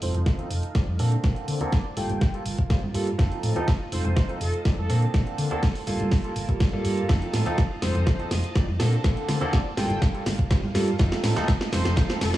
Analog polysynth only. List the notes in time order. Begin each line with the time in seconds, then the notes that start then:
0.02 C5
0.26 C5
1.73 D5
1.97 G5
3.92 C5
4.17 C5
4.41 A4
4.78 A4
5.51 A4
7.82 C5
8.07 C5
9.53 D5
9.77 G5
11.72 C5
11.97 C5
12.21 A4